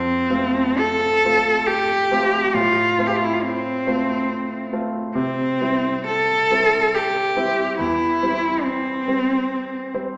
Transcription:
Already playing: grand piano F2, cello C4
0.30 grand piano A3 C4 F4
0.78 cello A4
1.25 grand piano A3 C4 F4
1.67 cello G4
2.11 grand piano A3 C4 F4
2.54 grand piano A2, cello F4
2.98 grand piano A3 C4 F4
3.07 cello G4
3.17 cello F4
3.25 cello E4
3.34 cello F4
3.43 cello C4
3.87 grand piano A3 C4 F4
4.73 grand piano A3 C4 F4
5.15 grand piano C3, cello C4
5.61 grand piano G3 C4 E4
6.07 cello A4
6.51 grand piano G3 C4 E4
6.94 cello G4
7.36 grand piano G3 C4 E4
7.78 grand piano E2, cello E4
8.23 grand piano G3 C4
8.64 cello C4
9.07 grand piano G3 C4
9.94 grand piano G3 C4

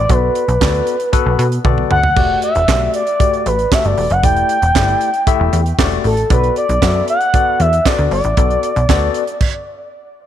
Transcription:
Already playing: analog synth lead D5
0.09 analog synth bass B1, tine electric piano B3 F#4 A4 D5, analog synth lead B4, kick, closed hi-hat
0.35 closed hi-hat
0.48 analog synth bass B1, closed hi-hat
0.61 analog synth bass D2, tine electric piano B3 F#4 A4 D5, kick, snare, clap
0.74 closed hi-hat
0.87 closed hi-hat
1.00 closed hi-hat
1.13 tine electric piano B3 F#4 A4 B4, kick, closed hi-hat
1.26 analog synth bass B1
1.39 analog synth bass B2, closed hi-hat
1.52 closed hi-hat
1.64 analog synth bass B1, tine electric piano B3 F#4 A4 D5, kick, high tom
1.78 mid tom
1.91 analog synth bass D2, analog synth lead F#5, mid tom
2.03 floor tom
2.16 analog synth bass E1, tine electric piano A3 F#4 G4 D5, kick, crash
2.42 analog synth lead E5, closed hi-hat
2.55 analog synth bass E1, closed hi-hat
2.68 analog synth bass B1, tine electric piano A3 F#4 G4 D5, kick, snare, clap
2.94 analog synth lead D5, closed hi-hat
3.07 closed hi-hat
3.19 tine electric piano A3 F#4 G4 D5, kick, closed hi-hat
3.33 closed hi-hat
3.46 analog synth bass A1, analog synth lead B4, closed hi-hat
3.59 closed hi-hat
3.71 tine electric piano A3 F#4 G4 A4, analog synth lead E5, kick, snare, clap
3.85 analog synth bass G1, analog synth lead D5, closed hi-hat
3.98 analog synth bass E1, open hi-hat
4.10 analog synth bass F#1, analog synth lead F#5, closed hi-hat
4.23 analog synth bass E1, tine electric piano A3 E4 G4 D5, analog synth lead G5, kick, closed hi-hat
4.37 closed hi-hat
4.49 closed hi-hat
4.62 analog synth bass E1, closed hi-hat
4.75 analog synth bass G1, tine electric piano A3 E4 G4 D5, kick, snare, clap
4.88 closed hi-hat
5.01 closed hi-hat
5.14 closed hi-hat
5.27 tine electric piano A3 E4 G4 E5, kick, closed hi-hat
5.40 analog synth bass E1
5.53 analog synth bass E2, closed hi-hat
5.66 closed hi-hat
5.79 analog synth bass E1, tine electric piano A3 F#4 G4 D5, kick, snare, clap
5.91 closed hi-hat
6.04 analog synth bass A1, analog synth lead A4, open hi-hat
6.17 closed hi-hat
6.30 analog synth bass B1, tine electric piano B3 F#4 A4 D5, analog synth lead B4, kick, closed hi-hat
6.44 closed hi-hat
6.56 analog synth lead D5, closed hi-hat
6.69 analog synth bass B1, closed hi-hat
6.82 analog synth bass F#2, tine electric piano B3 F#4 A4 E5, kick, snare, clap
7.08 analog synth lead F#5, closed hi-hat
7.21 closed hi-hat
7.34 tine electric piano B3 F#4 A4 D5, kick, closed hi-hat
7.60 analog synth bass E2, analog synth lead E5, closed hi-hat
7.73 closed hi-hat
7.85 tine electric piano B3 F#4 A4 D5, analog synth lead D5, kick, snare, clap
7.98 analog synth bass D2, closed hi-hat
8.11 analog synth bass G1, analog synth lead D5, open hi-hat
8.24 analog synth bass A1, closed hi-hat
8.37 analog synth bass B1, tine electric piano B3 F#4 A4 D5, kick, closed hi-hat
8.50 closed hi-hat
8.63 closed hi-hat
8.76 analog synth bass B1, closed hi-hat
8.89 analog synth bass D2, tine electric piano B3 F#4 A4 D5, kick, snare, clap
9.14 closed hi-hat
9.27 closed hi-hat
9.41 kick, crash

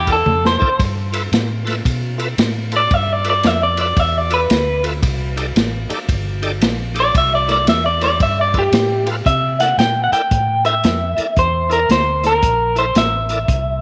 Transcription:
Already playing: fingered electric bass E2
0.07 tonewheel organ E4 A4 A#4 D5, kick, ride
0.12 clean electric guitar A4
0.26 fingered electric bass F2, high tom
0.45 clean electric guitar C5, snare
0.59 tonewheel organ E4 A4 A#4 D5, muted fingered electric bass stroke, kick
0.79 fingered electric bass G2, kick, ride
1.13 tonewheel organ F4 A4 B4 E5, ride
1.32 fingered electric bass A2, snare, ride
1.65 tonewheel organ F4 A4 B4 E5, snare, ride
1.85 fingered electric bass B2, kick, ride
2.18 tonewheel organ F4 A4 B4 E5, ride
2.38 fingered electric bass A2, snare, ride
2.72 tonewheel organ F4 A4 B4 E5, ride
2.77 clean electric guitar D5
2.91 fingered electric bass G2, clean electric guitar E5, kick, ride
3.13 clean electric guitar D5
3.24 tonewheel organ F4 A4 B4 E5, ride
3.30 clean electric guitar D5
3.43 fingered electric bass F2, clean electric guitar E5, snare, ride
3.63 clean electric guitar D5
3.77 tonewheel organ F4 A4 B4 E5, ride
3.81 clean electric guitar D5
3.96 fingered electric bass E2, clean electric guitar E5, kick, ride
4.18 clean electric guitar D5
4.30 tonewheel organ F4 A4 B4 E5, clean electric guitar B4, ride
4.50 fingered electric bass D2, snare, ride
4.83 tonewheel organ F4 A4 B4 E5, ride
5.03 fingered electric bass C2, kick, ride
5.36 tonewheel organ D#4 G4 A4 D5, ride
5.56 fingered electric bass A1, snare, ride
5.89 tonewheel organ D#4 G4 A4 D5, muted fingered electric bass stroke, ride
6.09 fingered electric bass G1, kick, ride
6.42 tonewheel organ D#4 G4 A4 D5, ride
6.61 fingered electric bass A#1, snare, ride
6.94 tonewheel organ D#4 G4 A4 D5, ride
7.00 clean electric guitar D5
7.15 fingered electric bass C2, clean electric guitar E5, kick, ride
7.35 clean electric guitar D5
7.48 tonewheel organ E4 A4 A#4 D5, clean electric guitar D5, snare, ride
7.67 fingered electric bass E2, clean electric guitar E5, snare, ride
7.86 clean electric guitar D5
8.01 tonewheel organ E4 A4 A#4 D5, clean electric guitar D5, snare, ride
8.20 fingered electric bass G2, clean electric guitar E5, kick, ride
8.41 clean electric guitar D5
8.53 tonewheel organ F4 A4 B4 E5, kick, ride
8.59 clean electric guitar G4
8.72 fingered electric bass A2, snare, ride
9.06 tonewheel organ F4 A4 B4 F5, ride
9.26 fingered electric bass C3, clean electric guitar E5, kick, closed hi-hat
9.60 tonewheel organ E4 A4 A#4 D5, clean electric guitar F#5, snare, closed hi-hat
9.78 fingered electric bass A#2, clean electric guitar G5, snare, closed hi-hat
10.04 clean electric guitar F#5
10.12 tonewheel organ E4 A4 A#4 D5, clean electric guitar G5, muted fingered electric bass stroke, closed hi-hat
10.31 fingered electric bass A2, kick, closed hi-hat
10.65 tonewheel organ E4 A4 A#4 C5, clean electric guitar E5, closed hi-hat
10.84 fingered electric bass F2, snare, closed hi-hat
11.17 tonewheel organ E4 A4 A#4 D5, muted fingered electric bass stroke, closed hi-hat
11.36 fingered electric bass E2, clean electric guitar C5, kick, closed hi-hat
11.69 tonewheel organ E4 A4 A#4 D5, clean electric guitar A#4, closed hi-hat
11.89 fingered electric bass D2, clean electric guitar C5, snare, closed hi-hat
12.23 tonewheel organ E4 A4 A#4 D5, clean electric guitar A#4, snare, closed hi-hat
12.42 fingered electric bass A#1, kick, closed hi-hat
12.75 tonewheel organ E4 A4 A#4 E5, clean electric guitar C5, closed hi-hat
12.95 fingered electric bass A1, clean electric guitar E5, snare, closed hi-hat
13.29 tonewheel organ E4 A4 A#4 D5, closed hi-hat
13.48 fingered electric bass C2, kick, closed hi-hat

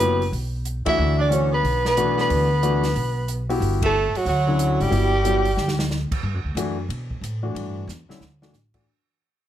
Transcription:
Already playing: tenor saxophone B3, soprano saxophone B4
0.00 upright bass F#1, grand piano F#3 B3 E4 G4, closed hi-hat
0.22 open hi-hat
0.32 upright bass B1, open hi-hat
0.65 closed hi-hat
0.86 grand piano E3 A3 D4 F#4, tenor saxophone E4, soprano saxophone E5, muted upright bass stroke, kick, ride
0.98 upright bass D2
1.18 tenor saxophone D4, soprano saxophone D5
1.30 grand piano E3 A3 D4 F#4, tenor saxophone C#4, soprano saxophone C#5, closed hi-hat
1.52 tenor saxophone B3, soprano saxophone B4
1.63 upright bass B1, open hi-hat
1.85 tenor saxophone B3, soprano saxophone B4, snare
1.97 grand piano E3 A3 D4 F#4, closed hi-hat
2.18 tenor saxophone B3, soprano saxophone B4, snare
2.30 upright bass D2, open hi-hat
2.63 grand piano E3 A3 D4 F#4, closed hi-hat
2.83 snare, open hi-hat
2.96 upright bass B1, open hi-hat
3.28 closed hi-hat
3.49 grand piano B3 E4 F#4 G4, open hi-hat
3.60 upright bass G1, open hi-hat
3.82 tenor saxophone A3, soprano saxophone A4, kick, ride
4.14 tenor saxophone F#3, soprano saxophone F#4, muted upright bass stroke, open hi-hat
4.25 upright bass D2, tenor saxophone F#3, soprano saxophone F#4, open hi-hat
4.47 grand piano D3 F#3 C#4 E4
4.59 closed hi-hat
4.80 upright bass G#1, tenor saxophone G3, soprano saxophone G4, open hi-hat
4.90 upright bass G1, grand piano F#3 B3 E4 G4, open hi-hat
5.25 grand piano F#3 B3 E4 G4, closed hi-hat
5.45 open hi-hat
5.57 upright bass D2, snare
5.68 snare
5.79 snare
5.90 snare
6.11 muted upright bass stroke, kick, crash
6.23 upright bass G2
6.34 upright bass F#2
6.44 upright bass D2
6.55 upright bass F#2, grand piano E3 A3 D4 F#4, hi-hat pedal, ride
6.89 upright bass B2, ride
7.11 kick
7.21 upright bass A2, hi-hat pedal, ride
7.43 grand piano E3 A3 D4 F#4
7.55 upright bass G2, ride
7.88 upright bass E2, snare, hi-hat pedal
8.09 grand piano D3 G3 C#4 E4, muted upright bass stroke, snare
8.20 upright bass D2, snare
8.42 grand piano E3 A3 D4 F#4, snare
8.53 upright bass A1, snare, hi-hat pedal
8.74 grand piano E3 A3 D4 F#4, kick, crash

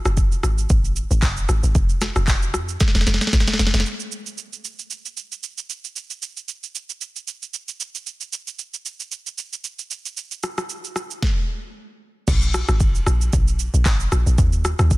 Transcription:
0.05 log drum bass F#1, cross-stick, shaker
0.17 kick, shaker
0.32 shaker
0.43 log drum bass G#1, cross-stick, shaker
0.58 shaker
0.70 log drum bass G#1, kick, shaker
0.85 shaker
0.96 shaker
1.11 log drum bass G#1, shaker
1.22 log drum bass F#1, kick, clap, shaker
1.37 shaker
1.49 log drum bass G#1, cross-stick, shaker
1.63 log drum bass G#1, shaker
1.75 log drum bass F1, kick, shaker
1.89 shaker
2.01 cross-stick, snare, shaker
2.16 log drum bass F1, cross-stick, shaker
2.28 kick, clap, shaker
2.42 shaker
2.54 log drum bass F2, cross-stick, shaker
2.69 shaker
2.80 kick, snare, shaker
2.88 snare
2.95 log drum bass F1, snare, shaker
3.01 snare
3.07 log drum bass F1, snare, shaker
3.14 snare
3.21 snare, shaker
3.27 snare
3.33 log drum bass G#1, kick, snare, shaker
3.40 snare
3.47 snare, shaker
3.53 snare
3.59 log drum bass F1, snare, shaker
3.67 snare
3.74 log drum bass F1, snare, shaker
3.80 snare
3.86 shaker
4.00 shaker
4.12 shaker
4.26 shaker
4.38 shaker
4.53 shaker
4.65 shaker
4.79 shaker
4.91 shaker
5.06 shaker
5.17 shaker
5.32 shaker
5.43 shaker
5.58 shaker
5.70 shaker
5.85 shaker
5.96 shaker
6.10 shaker
6.22 shaker
6.37 shaker
6.49 shaker
6.64 shaker
6.75 shaker
6.90 shaker
7.01 shaker
7.16 shaker
7.28 shaker
7.43 shaker
7.54 shaker
7.68 shaker
7.80 shaker
7.95 shaker
8.07 shaker
8.21 shaker
8.33 shaker
8.47 shaker
8.59 shaker
8.74 shaker
8.86 shaker
9.00 shaker
9.12 shaker
9.27 shaker
9.38 shaker
9.53 shaker
9.64 shaker
9.79 shaker
9.91 shaker
10.06 shaker
10.17 shaker
10.31 shaker
10.43 cross-stick, shaker
10.58 cross-stick, shaker
10.70 shaker
10.85 shaker
10.96 cross-stick, shaker
11.11 shaker
11.22 kick, snare
12.28 log drum bass A#1, kick, crash, shaker
12.42 shaker
12.54 cross-stick, shaker
12.69 log drum bass G#1, cross-stick, shaker
12.80 kick, shaker
12.95 shaker
13.07 log drum bass A#1, cross-stick, shaker
13.21 shaker
13.33 log drum bass A#1, kick, shaker
13.48 shaker
13.59 shaker
13.74 log drum bass A#1, shaker
13.86 log drum bass G#1, kick, clap, shaker
14.00 shaker
14.12 log drum bass A#1, cross-stick, shaker
14.26 log drum bass A#1, shaker
14.38 log drum bass D#2, kick, shaker
14.53 shaker
14.65 cross-stick, shaker
14.79 log drum bass D#2, cross-stick, shaker
14.91 kick, shaker

